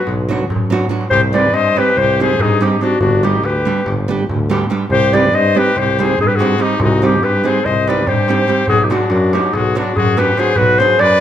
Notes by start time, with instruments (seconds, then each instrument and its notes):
Already playing: trumpet F#4, clarinet B4
0.07 tuba B1, darbuka tek, darbuka dum
0.19 darbuka tek
0.29 nylon-string guitar F#3 B3 D4 F#4, darbuka tek
0.40 darbuka tek
0.50 tuba F#2, darbuka dum
0.70 nylon-string guitar F#3 B3 D4 F#4, darbuka tek
0.82 darbuka dum
0.89 nylon-string guitar F#3 B3 D4 F#4, darbuka tek
1.01 darbuka tek
1.10 tuba C2, trumpet G4, clarinet C5, darbuka dum
1.33 nylon-string guitar G3 C4 D#4 G4, trumpet B4, clarinet D5, darbuka tek
1.44 darbuka tek
1.53 tuba G2, trumpet C5, clarinet D#5, darbuka tek
1.76 nylon-string guitar G3 C4 D#4 G4, trumpet G4, clarinet B4, darbuka tek
1.96 tuba C2, trumpet G4, clarinet C5, darbuka tek, darbuka dum
2.09 darbuka tek
2.20 nylon-string guitar G3 C4 D#4 G4, trumpet G#4, clarinet C5, darbuka tek
2.39 tuba G2, trumpet D#4, clarinet G#4, darbuka dum
2.60 nylon-string guitar G3 C4 D#4 G4, trumpet D#4, clarinet G4, darbuka tek
2.71 darbuka tek
2.81 nylon-string guitar G3 C4 D#4 G4, trumpet D4, clarinet F#4, darbuka tek
3.00 tuba G1, trumpet D4, clarinet F#4, darbuka dum
3.23 nylon-string guitar G3 B3 D4 G4, trumpet D#4, clarinet G4, darbuka tek
3.34 darbuka tek
3.43 tuba D2, trumpet G4, clarinet B4, darbuka tek
3.65 nylon-string guitar G3 B3 D4 G4, darbuka tek
3.86 tuba G1, darbuka tek, darbuka dum
3.98 darbuka tek
4.08 nylon-string guitar G3 B3 D4 G4
4.20 darbuka tek
4.29 tuba D2, darbuka dum
4.50 nylon-string guitar G3 B3 D4 G4, darbuka tek
4.61 darbuka tek
4.70 nylon-string guitar G3 B3 D4 G4, darbuka tek
4.90 tuba C2, trumpet G4, clarinet C5, darbuka dum
5.13 nylon-string guitar G3 C4 D#4 G4, trumpet B4, clarinet D5, darbuka tek
5.24 darbuka tek
5.33 tuba G2, trumpet C5, clarinet D#5, darbuka tek
5.55 nylon-string guitar G3 C4 D#4 G4, clarinet B4, darbuka tek
5.59 trumpet G4
5.76 tuba C2, trumpet G4, clarinet C5, darbuka tek, darbuka dum
5.87 darbuka tek
5.98 nylon-string guitar G3 C4 D#4 G4, trumpet G#4, clarinet C5, darbuka tek
6.10 darbuka tek
6.19 tuba G2, trumpet D#4, clarinet G#4, darbuka dum
6.26 trumpet G4, clarinet B4
6.35 nylon-string guitar G3, trumpet F#4, clarinet G#4
6.40 nylon-string guitar C4 D#4 G4, darbuka tek
6.51 darbuka tek
6.58 nylon-string guitar G3 C4 D#4 G4, trumpet D#4, darbuka tek
6.63 clarinet G4
6.79 tuba C2, trumpet D#4, clarinet F#4, darbuka dum
6.92 darbuka tek
7.02 nylon-string guitar G3 C4 D#4 G4, trumpet D#4, clarinet G4, darbuka tek
7.13 darbuka tek
7.22 tuba G2, trumpet G4, clarinet B4, darbuka tek
7.35 darbuka tek
7.44 nylon-string guitar G3 C4 D#4 G4, trumpet G#4, clarinet C5, darbuka tek
7.56 darbuka tek
7.65 tuba C2, trumpet C5, clarinet D#5, darbuka tek, darbuka dum
7.77 darbuka tek
7.87 nylon-string guitar G3 C4 D#4 G4, trumpet B4, clarinet D5, darbuka tek
7.98 darbuka tek
8.07 tuba G2, trumpet G4, clarinet C5, darbuka dum
8.18 darbuka tek
8.28 nylon-string guitar G3 C4 D#4 G4, darbuka tek
8.38 darbuka tek
8.48 nylon-string guitar G3 C4 D#4 G4, darbuka tek
8.67 tuba B1, trumpet F#4, clarinet G#4, darbuka dum
8.84 trumpet D#4, clarinet G4
8.90 nylon-string guitar F#3 B3 D4 F#4, trumpet D4, clarinet F#4, darbuka tek
9.00 darbuka tek
9.10 tuba F#2, darbuka tek
9.22 darbuka tek
9.33 nylon-string guitar F#3 B3 D4 F#4, trumpet D#4, clarinet G4, darbuka tek
9.53 tuba B1, trumpet F#4, clarinet G#4, darbuka tek, darbuka dum
9.65 darbuka tek
9.75 nylon-string guitar F#3 B3 D4 F#4, trumpet D4, clarinet F#4, darbuka tek
9.87 darbuka tek
9.96 tuba F#2, trumpet F#4, clarinet G#4, darbuka dum
10.08 darbuka tek
10.17 nylon-string guitar F#3 B3 D4 F#4, trumpet G4, clarinet B4, darbuka tek
10.37 nylon-string guitar F#3 B3 D4 F#4, trumpet G#4, clarinet C5, darbuka tek
10.47 darbuka tek
10.55 tuba B1, trumpet F#4, clarinet B4, darbuka dum
10.79 nylon-string guitar F#3 B3 D4 F#4, trumpet G#4, clarinet C5, darbuka tek
10.89 darbuka tek
10.99 tuba F#2, trumpet B4, clarinet D5, darbuka tek
11.11 darbuka tek